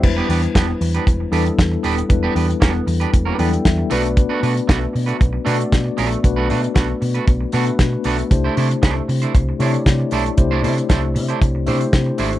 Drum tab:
CC |x---------------|----------------|----------------|----------------|
HH |--oxx-oxx-oxx-ox|x-oxx-oxx-oxx-ox|x-oxx-oxx-oxx-ox|x-oxx-oxx-oxx-ox|
SD |----o-------o---|----o-------o---|----o-------o---|----o-------o---|
BD |o---o---o---o---|o---o---o---o---|o---o---o---o---|o---o---o---o---|

CC |----------------|----------------|
HH |x-oxx-oxx-oxx-ox|x-oxx-oxx-oxx-ox|
SD |----o-------o---|----o-------o---|
BD |o---o---o---o---|o---o---o---o---|